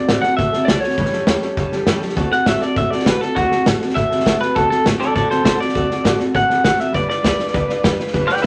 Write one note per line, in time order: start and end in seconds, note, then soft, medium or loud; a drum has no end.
0.00 0.19 D5 loud
0.08 0.18 A2 medium
0.08 0.24 D3 medium
0.08 0.24 A3 medium
0.08 0.24 C4 medium
0.08 0.24 F#4 medium
0.08 0.22 A4 medium
0.08 snare loud
0.08 hi-hat pedal medium
0.22 0.39 F#4 medium
0.22 0.39 A4 medium
0.22 0.36 F#5 medium
0.22 snare soft
0.27 0.38 C4 soft
0.37 0.48 A2 medium
0.37 0.53 A3 medium
0.37 0.54 C4 medium
0.37 0.53 F#4 medium
0.37 0.68 E5 loud
0.37 kick loud
0.37 snare soft
0.41 0.51 A4 medium
0.52 0.67 C4 medium
0.52 0.68 F#4 medium
0.52 0.68 A4 medium
0.52 snare soft
0.65 0.78 B1 medium
0.65 0.83 D3 medium
0.65 0.83 A3 medium
0.65 0.84 C4 medium
0.65 0.80 D5 medium
0.65 snare loud
0.65 hi-hat pedal medium
0.70 0.83 F#4 medium
0.70 0.81 A4 loud
0.80 0.98 F#4 soft
0.80 0.98 A4 medium
0.80 1.86 C#5 medium
0.80 snare soft
0.85 0.98 C4 soft
0.90 snare soft
0.97 1.07 A1 medium
0.97 1.13 A2 medium
0.97 1.13 E3 medium
0.97 1.13 G3 medium
0.97 1.13 C#4 medium
0.97 1.12 G4 medium
0.97 1.11 A4 medium
0.97 kick loud
0.97 snare soft
1.05 snare soft
1.12 1.27 G3 soft
1.12 1.27 C#4 medium
1.12 1.27 G4 medium
1.12 1.28 A4 medium
1.12 snare soft
1.27 1.37 E2 loud
1.27 1.43 A2 medium
1.27 1.43 E3 loud
1.27 1.43 G3 medium
1.27 1.43 C#4 loud
1.27 1.42 G4 loud
1.27 1.41 A4 medium
1.27 snare loud
1.27 hi-hat pedal medium
1.42 1.55 G3 soft
1.42 1.57 C#4 medium
1.42 1.58 G4 medium
1.42 1.58 A4 medium
1.42 snare soft
1.57 1.67 E2 medium
1.57 1.72 G3 medium
1.57 1.72 C#4 medium
1.57 1.72 G4 medium
1.57 1.70 A4 medium
1.57 kick loud
1.57 snare soft
1.71 1.86 G3 medium
1.71 1.86 C#4 medium
1.71 1.87 G4 medium
1.71 1.87 A4 medium
1.71 muted upright bass stroke medium
1.71 snare soft
1.86 1.96 F#2 loud
1.86 2.02 A2 medium
1.86 2.02 E3 medium
1.86 2.02 G3 loud
1.86 2.02 C#4 loud
1.86 2.01 G4 loud
1.86 1.99 A4 medium
1.86 snare loud
1.86 hi-hat pedal medium
2.01 2.15 G3 medium
2.01 2.16 C#4 soft
2.01 2.16 G4 medium
2.01 2.16 A4 medium
2.01 snare soft
2.09 snare soft
2.15 2.26 D2 medium
2.15 2.31 D3 medium
2.15 2.32 A3 medium
2.15 2.31 C4 medium
2.15 2.30 F#4 medium
2.15 2.28 A4 loud
2.15 kick loud
2.15 snare soft
2.30 2.45 C4 medium
2.30 2.45 F#4 medium
2.30 2.46 A4 medium
2.30 2.47 F#5 loud
2.30 snare soft
2.45 2.56 A2 loud
2.45 2.61 D3 medium
2.45 2.61 A3 medium
2.45 2.62 C4 medium
2.45 2.61 F#4 medium
2.45 2.60 A4 medium
2.45 2.62 E5 medium
2.45 kick medium
2.45 snare loud
2.45 hi-hat pedal medium
2.61 2.76 C4 soft
2.61 2.77 F#4 medium
2.61 2.77 A4 medium
2.61 2.76 D5 loud
2.61 snare soft
2.76 2.86 A2 medium
2.76 2.92 A3 medium
2.76 2.92 C4 medium
2.76 2.92 F#4 medium
2.76 2.90 A4 medium
2.76 2.90 E5 medium
2.76 kick loud
2.76 snare soft
2.90 3.06 C4 soft
2.90 3.07 F#4 medium
2.90 3.07 A4 medium
2.90 3.07 D5 medium
2.90 snare soft
2.99 snare soft
3.06 3.16 B2 loud
3.06 3.22 D3 medium
3.06 3.22 A3 medium
3.06 3.22 C4 medium
3.06 3.22 F#4 medium
3.06 3.21 A4 medium
3.06 3.21 B4 medium
3.06 kick medium
3.06 snare loud
3.06 hi-hat pedal medium
3.21 3.37 F#4 soft
3.21 3.36 A4 medium
3.21 3.37 A4 medium
3.21 muted upright bass stroke medium
3.21 snare soft
3.25 3.37 C4 soft
3.36 3.46 D2 medium
3.36 3.52 D3 medium
3.36 3.52 A3 medium
3.36 3.52 C4 medium
3.36 3.65 F#4 loud
3.36 3.51 F#4 medium
3.36 3.50 A4 medium
3.36 kick loud
3.36 snare soft
3.51 3.65 C4 soft
3.51 3.66 F#4 medium
3.51 3.66 A4 medium
3.51 snare soft
3.66 3.76 A2 medium
3.66 3.81 D3 medium
3.66 3.81 A3 medium
3.66 3.81 C4 medium
3.66 3.81 F#4 medium
3.66 3.80 A4 medium
3.66 kick medium
3.66 snare loud
3.66 hi-hat pedal medium
3.81 3.95 C4 medium
3.81 3.95 F#4 medium
3.81 3.96 A4 medium
3.81 snare soft
3.89 snare soft
3.95 4.06 A2 medium
3.95 4.10 A3 medium
3.95 4.11 C4 medium
3.95 4.10 F#4 medium
3.95 4.08 A4 medium
3.95 4.39 E5 loud
3.95 kick loud
3.95 snare soft
4.09 4.24 C4 medium
4.09 4.25 F#4 medium
4.09 4.25 A4 medium
4.09 muted upright bass stroke medium
4.09 snare soft
4.20 snare soft
4.24 4.35 B2 medium
4.24 4.40 D3 medium
4.24 4.40 A3 medium
4.24 4.41 C4 medium
4.24 4.40 F#4 medium
4.24 4.38 A4 loud
4.24 kick loud
4.24 snare loud
4.24 hi-hat pedal medium
4.39 4.55 C4 soft
4.39 4.55 F#4 soft
4.39 4.55 A4 medium
4.39 4.55 B4 medium
4.39 muted upright bass stroke medium
4.39 snare soft
4.55 4.66 D2 medium
4.55 4.70 D3 medium
4.55 4.71 A3 medium
4.55 4.71 C4 medium
4.55 4.69 F#4 medium
4.55 4.69 A4 medium
4.55 4.68 A4 medium
4.55 kick loud
4.55 snare soft
4.69 4.83 C4 medium
4.69 4.84 F#4 medium
4.69 4.84 A4 medium
4.69 4.85 A4 loud
4.69 muted upright bass stroke medium
4.69 snare soft
4.83 4.95 A2 medium
4.83 4.99 D3 medium
4.83 5.00 A3 medium
4.83 5.00 C4 medium
4.83 4.98 F#4 medium
4.83 4.97 A4 medium
4.83 kick medium
4.83 snare loud
4.83 hi-hat pedal medium
4.98 5.13 C4 soft
4.98 5.13 F#4 soft
4.98 5.14 A4 medium
4.98 5.15 D5 medium
4.98 snare soft
5.12 5.25 A2 medium
5.12 5.29 A3 medium
5.12 5.29 C4 medium
5.12 5.28 F#4 medium
5.12 5.29 A4 medium
5.12 5.27 A4 medium
5.12 kick loud
5.12 snare soft
5.16 5.30 D5 medium
5.28 5.43 C4 medium
5.28 5.43 F#4 medium
5.28 5.44 A4 medium
5.28 5.44 C5 medium
5.28 snare soft
5.43 5.54 B2 medium
5.43 5.59 D3 medium
5.43 5.59 A3 medium
5.43 5.59 C4 medium
5.43 5.59 F#4 medium
5.43 5.59 A4 medium
5.43 5.58 A4 medium
5.43 5.60 C5 medium
5.43 kick medium
5.43 snare loud
5.43 hi-hat pedal medium
5.59 5.74 C4 soft
5.59 5.74 F#4 soft
5.59 5.74 A4 medium
5.59 6.18 D5 loud
5.59 muted upright bass stroke medium
5.59 snare soft
5.69 snare soft
5.73 5.85 D2 medium
5.73 5.89 D3 medium
5.73 5.89 A3 medium
5.73 5.89 C4 medium
5.73 5.88 F#4 medium
5.73 5.87 A4 medium
5.73 kick loud
5.73 snare soft
5.88 6.03 C4 soft
5.88 6.04 F#4 soft
5.88 6.04 A4 medium
5.88 muted upright bass stroke medium
5.88 snare soft
6.03 6.14 A2 medium
6.03 6.19 D3 medium
6.03 6.19 A3 medium
6.03 6.19 C4 medium
6.03 6.18 F#4 loud
6.03 6.16 A4 loud
6.03 kick medium
6.03 snare loud
6.03 hi-hat pedal medium
6.17 6.33 C4 medium
6.17 6.34 F#4 medium
6.17 6.33 A4 medium
6.17 snare soft
6.33 6.44 A2 medium
6.33 6.49 A3 medium
6.33 6.49 C4 medium
6.33 6.49 F#4 medium
6.33 6.47 A4 medium
6.33 6.64 F#5 loud
6.33 kick loud
6.33 snare soft
6.48 6.64 C4 soft
6.48 6.64 F#4 medium
6.48 6.64 A4 medium
6.48 snare soft
6.63 6.74 B2 medium
6.63 6.79 D3 medium
6.63 6.79 A3 medium
6.63 6.79 C4 medium
6.63 6.78 F#4 medium
6.63 6.76 A4 medium
6.63 6.80 F#5 medium
6.63 kick loud
6.63 snare loud
6.63 hi-hat pedal medium
6.78 6.92 C4 soft
6.78 6.93 F#4 soft
6.78 6.93 A4 medium
6.78 6.94 E5 medium
6.78 muted upright bass stroke medium
6.78 snare soft
6.92 7.04 G1 medium
6.92 7.08 G3 medium
6.92 7.08 D4 medium
6.92 7.08 F4 medium
6.92 7.07 B4 medium
6.92 7.08 D5 loud
6.92 kick loud
6.92 snare soft
7.08 7.22 D4 medium
7.08 7.23 F4 soft
7.08 7.23 B4 medium
7.08 7.96 D5 loud
7.08 snare soft
7.23 7.34 D2 medium
7.23 7.38 G3 medium
7.23 7.39 D4 medium
7.23 7.39 F4 medium
7.23 7.37 B4 medium
7.23 kick medium
7.23 snare loud
7.23 hi-hat pedal medium
7.38 7.52 D4 medium
7.38 7.54 F4 soft
7.38 7.54 B4 medium
7.38 snare soft
7.47 snare soft
7.53 7.64 D2 medium
7.53 7.68 G3 medium
7.53 7.69 D4 medium
7.53 7.69 F4 medium
7.53 7.66 B4 medium
7.53 kick loud
7.53 snare soft
7.68 7.83 D4 medium
7.68 7.84 F4 medium
7.68 7.83 B4 medium
7.68 muted upright bass stroke medium
7.68 snare soft
7.83 7.93 E2 loud
7.83 7.99 G3 loud
7.83 7.99 D4 medium
7.83 7.98 F4 loud
7.83 7.97 B4 medium
7.83 kick loud
7.83 snare loud
7.83 hi-hat pedal loud
7.98 8.13 D4 soft
7.98 8.14 F4 medium
7.98 8.14 B4 medium
7.98 muted upright bass stroke medium
7.98 snare soft
8.07 snare soft
8.13 8.23 G1 loud
8.13 8.28 G3 medium
8.13 8.29 D4 medium
8.13 8.29 F4 loud
8.13 8.27 B4 loud
8.13 kick loud
8.13 snare soft
8.27 8.44 F4 medium
8.27 8.44 B4 medium
8.27 8.42 D5 medium
8.27 8.42 G5 loud
8.27 muted upright bass stroke medium
8.27 snare soft
8.31 8.43 D4 soft
8.37 snare soft
8.42 8.46 B4 medium
8.42 8.46 E5 medium